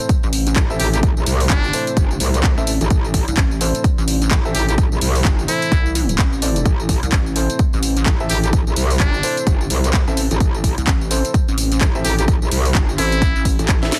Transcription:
Already playing: A3 C4 E4 D5
0.09 kick, closed hi-hat, tambourine
0.23 A1, tambourine
0.33 open hi-hat, tambourine
0.47 closed hi-hat, tambourine
0.56 A1, kick, clap, tambourine
0.70 C4 E4 A4 E5, tambourine
0.80 A1 G4, open hi-hat, tambourine
0.94 G4, closed hi-hat, tambourine
1.03 kick, closed hi-hat, tambourine
1.17 A#1, tambourine
1.26 C2, open hi-hat, tambourine
1.40 open hi-hat, tambourine
1.50 G1 D4, kick, clap, closed hi-hat, tambourine
1.64 tambourine
1.73 C4 E4 A4 C5, open hi-hat, tambourine
1.87 closed hi-hat, tambourine
1.97 G1, kick, closed hi-hat, tambourine
2.11 tambourine
2.20 C2, open hi-hat, tambourine
2.34 closed hi-hat, tambourine
2.44 kick, clap, tambourine
2.58 A1 C4 E4 A4 E5, tambourine
2.67 open hi-hat, tambourine
2.81 A1, closed hi-hat, tambourine
2.90 A1, kick, closed hi-hat, tambourine
3.04 tambourine
3.14 kick, open hi-hat, tambourine
3.28 C2, closed hi-hat, tambourine
3.37 A1, kick, clap, closed hi-hat, tambourine
3.51 tambourine
3.61 C4 E4 A4 C5, open hi-hat, tambourine
3.75 closed hi-hat, tambourine
3.84 kick, closed hi-hat, tambourine
3.98 A1, tambourine
4.08 open hi-hat, tambourine
4.22 closed hi-hat, tambourine
4.31 A1, kick, clap, tambourine
4.45 C4 E4 A4 E5, tambourine
4.54 A1 G4, open hi-hat, tambourine
4.68 G4, closed hi-hat, tambourine
4.78 kick, closed hi-hat, tambourine
4.92 A#1, tambourine
5.01 C2, open hi-hat, tambourine
5.15 open hi-hat, tambourine
5.25 G1, kick, clap, tambourine
5.39 tambourine
5.48 C4 E4 A4 C5, open hi-hat, tambourine
5.62 closed hi-hat, tambourine
5.72 C2, kick, closed hi-hat, tambourine
5.86 tambourine
5.95 open hi-hat, tambourine
6.09 closed hi-hat, tambourine
6.19 A1, kick, clap, tambourine
6.33 tambourine
6.42 C4 E4 A4 D5, open hi-hat, tambourine
6.56 closed hi-hat, tambourine
6.66 A1 C5, kick, closed hi-hat, tambourine
6.80 tambourine
6.89 kick, open hi-hat, tambourine
7.03 C2, closed hi-hat, tambourine
7.12 A1, kick, clap, closed hi-hat, tambourine
7.26 tambourine
7.36 C4 E4 A4 C5, open hi-hat, tambourine
7.50 closed hi-hat, tambourine
7.59 kick, closed hi-hat, tambourine
7.73 A1, tambourine
7.83 open hi-hat, tambourine
7.97 closed hi-hat, tambourine
8.06 A1, kick, clap, tambourine
8.20 C4 E4 A4 E5, tambourine
8.29 A1 G4, open hi-hat, tambourine
8.44 G4, closed hi-hat, tambourine
8.53 kick, closed hi-hat, tambourine
8.67 A#1, tambourine
8.76 C2, open hi-hat, tambourine
8.90 open hi-hat, tambourine
9.00 G1 D4, kick, clap, closed hi-hat, tambourine
9.14 tambourine
9.23 C4 E4 A4 C5, open hi-hat, tambourine
9.37 closed hi-hat, tambourine
9.47 G1, kick, closed hi-hat, tambourine
9.61 tambourine
9.70 C2, open hi-hat, tambourine
9.84 closed hi-hat, tambourine
9.94 kick, clap, tambourine
10.08 A1 C4 E4 A4 E5, tambourine
10.17 open hi-hat, tambourine
10.31 A1, closed hi-hat, tambourine
10.40 A1, kick, closed hi-hat, tambourine
10.54 tambourine
10.64 kick, open hi-hat, tambourine
10.78 C2, closed hi-hat, tambourine
10.87 A1, kick, clap, closed hi-hat, tambourine
11.01 tambourine
11.11 C4 E4 A4 C5, open hi-hat, tambourine
11.25 closed hi-hat, tambourine
11.34 kick, closed hi-hat, tambourine
11.48 A1, tambourine
11.58 open hi-hat, tambourine
11.72 closed hi-hat, tambourine
11.81 A1, kick, clap, tambourine
11.95 C4 E4 A4 E5, tambourine
12.04 A1 G4, open hi-hat, tambourine
12.18 G4, closed hi-hat, tambourine
12.28 kick, closed hi-hat, tambourine
12.42 A#1, tambourine
12.51 C2, open hi-hat, tambourine
12.65 open hi-hat, tambourine
12.75 G1, kick, clap, closed hi-hat, tambourine
12.89 tambourine
12.98 A1 C4 E4 A4 C5, open hi-hat, tambourine
13.12 closed hi-hat, tambourine
13.22 kick, closed hi-hat, tambourine
13.36 A1, tambourine
13.45 kick, open hi-hat, tambourine
13.59 A1, closed hi-hat, tambourine
13.69 kick, clap, closed hi-hat, tambourine
13.83 C4 E4 A4 E5, snare, tambourine
13.92 snare, open hi-hat, tambourine

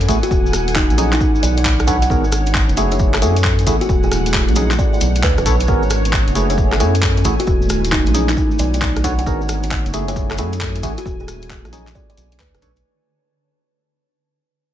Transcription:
Already playing: F#5 G#5
0.01 closed hi-hat, cabasa
0.08 A1 A3 E4 F#4 G#4, kick, closed hi-hat, cabasa
0.23 F#4, closed hi-hat, cabasa
0.31 D#1 F#4, kick, cabasa
0.46 cabasa
0.53 cross-stick, closed hi-hat, cabasa
0.68 closed hi-hat, cabasa
0.73 D#4 C#5, kick, clap, cabasa
0.90 A#1, closed hi-hat, cabasa
0.98 F#3 C#4 D#4 G#4, closed hi-hat, cabasa
1.13 D#4, clap, closed hi-hat, cabasa
1.20 D#4, kick, cabasa
1.35 cabasa
1.43 B1 D5, closed hi-hat, cabasa
1.57 D5, closed hi-hat, cabasa
1.65 kick, clap, cabasa
1.79 cross-stick, closed hi-hat, cabasa
1.87 D4 A4 B4 C#5 F#5, kick, closed hi-hat, cabasa
2.02 F#5, closed hi-hat, cabasa
2.10 G#1 B3 F#4 G#4 A#4, kick, cabasa
2.24 cabasa
2.32 F#5, cross-stick, closed hi-hat, cabasa
2.42 G#5
2.46 closed hi-hat, cabasa
2.54 kick, clap, cabasa
2.69 F#1, closed hi-hat, cabasa
2.77 A3 E4 F#4 G#4, closed hi-hat, cabasa
2.91 C#5, closed hi-hat, cabasa
2.99 kick, cabasa
3.14 cross-stick, clap, cabasa
3.22 F#2 A3 E4 F#4 G#4 A4, closed hi-hat, cabasa
3.37 closed hi-hat, cabasa
3.44 kick, clap, cabasa
3.59 closed hi-hat, cabasa
3.67 A1 A3 E4 F#4 G#4, kick, closed hi-hat, cabasa
3.81 F#4, closed hi-hat, cabasa
3.89 D#1 F#4, kick, cabasa
4.03 G#4 C#5, cabasa
4.12 cross-stick, closed hi-hat, cabasa
4.26 closed hi-hat, cabasa
4.33 kick, clap, cabasa
4.48 A#1, closed hi-hat, cabasa
4.56 F#3 C#4 D#4 G#4, closed hi-hat, cabasa
4.71 clap, closed hi-hat, cabasa
4.79 D5, kick, cabasa
4.93 D5, cabasa
5.01 B1, closed hi-hat, cabasa
5.16 closed hi-hat, cabasa
5.23 D2 B4, kick, clap, cabasa
5.38 F#1 B4, cross-stick, closed hi-hat, cabasa
5.46 B1 D4 A4 B4 C#5, kick, closed hi-hat, cabasa
5.60 closed hi-hat, cabasa
5.68 G#1 B3 D#4 F#4 G#4 A#4, kick, cabasa
5.83 cabasa
5.90 cross-stick, closed hi-hat, cabasa
6.01 G#5
6.05 closed hi-hat, cabasa
6.13 kick, clap, cabasa
6.28 F#1, closed hi-hat, cabasa
6.35 A3 C#4 E4 F#4 G#4 G#5, closed hi-hat, cabasa
6.50 C#5, closed hi-hat, cabasa
6.58 kick, cabasa
6.72 cross-stick, clap, cabasa
6.80 F#2 A3 E4 F#4 G#4 A4, closed hi-hat, cabasa
6.95 closed hi-hat, cabasa
7.03 kick, clap, cabasa
7.17 closed hi-hat, cabasa
7.25 A1 A3 E4 F#4 G#4, kick, closed hi-hat, cabasa
7.40 F#4, closed hi-hat, cabasa
7.47 D#1 A#3 C#4 F4 F#4, kick, cabasa
7.62 cabasa
7.69 cross-stick, closed hi-hat, cabasa
7.85 C#5, closed hi-hat, cabasa
7.92 D#4, kick, clap, cabasa
8.06 A#1, closed hi-hat, cabasa
8.14 F#3 C#4 D#4 G#4, closed hi-hat, cabasa
8.29 D#4, clap, closed hi-hat, cabasa
8.37 A3 D4 D#4, kick, cabasa
8.51 cabasa
8.59 B1 D5, closed hi-hat, cabasa
8.74 D5, closed hi-hat, cabasa
8.81 kick, clap, cabasa
8.96 cross-stick, closed hi-hat, cabasa
9.04 D4 A4 B4 C#5 F#5, kick, closed hi-hat, cabasa
9.19 F#5, closed hi-hat, cabasa
9.26 G#1 A#3 B3 D#4 F#4 G#4 A#4, kick, cabasa
9.41 cabasa
9.49 cross-stick, closed hi-hat, cabasa
9.59 G#5
9.63 closed hi-hat, cabasa
9.71 kick, clap, cabasa
9.86 F#1, closed hi-hat, cabasa
9.94 A3 C#4 E4 F#4 G#4 G#5, closed hi-hat, cabasa
10.08 C#5, closed hi-hat, cabasa
10.16 kick, cabasa
10.31 cross-stick, clap, cabasa
10.38 F#2 A3 E4 F#4 G#4 A4, closed hi-hat, cabasa
10.53 closed hi-hat, cabasa
10.61 kick, clap, cabasa
10.75 closed hi-hat, cabasa
10.83 A1 A3 E4 F#4 G#4, kick, closed hi-hat, cabasa
10.98 F#4, closed hi-hat, cabasa
11.05 D#1 A#3 F4 F#4, kick, cabasa
11.20 G#4, cabasa
11.28 cross-stick, closed hi-hat, cabasa
11.42 closed hi-hat, cabasa
11.50 kick, clap, cabasa
11.65 A#1, cross-stick, closed hi-hat, cabasa
11.73 F#3 C#4 D#4 G#4, closed hi-hat, cabasa
11.87 clap, closed hi-hat, cabasa
11.95 A3 D4 D5, kick, cabasa
12.10 D5, closed hi-hat, cabasa
12.17 B1, closed hi-hat, cabasa
12.32 closed hi-hat, cabasa
12.40 D2 B4, kick, clap, cabasa
12.54 F#1 B4, cross-stick, closed hi-hat, cabasa
12.62 B1 D4 A4 B4 C#5, kick, closed hi-hat, cabasa
12.76 closed hi-hat, cabasa

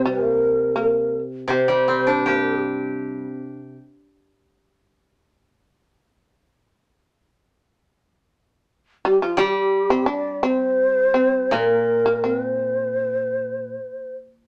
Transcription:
Already playing: C3
0.05 G3 A#4
0.26 A#3
0.76 A#3 A#4
1.48 C3 C4
1.52 C5
1.68 G3
1.88 C4
2.07 D4
2.26 A#3 G4
9.05 G3 G4
9.22 F3 F4
9.37 G3 G4
9.90 C4
10.06 D4 D5
10.43 C4 C5
11.14 C4
11.51 A#2 A#3
11.57 A#4
12.06 A#3
12.24 C4
12.29 C5

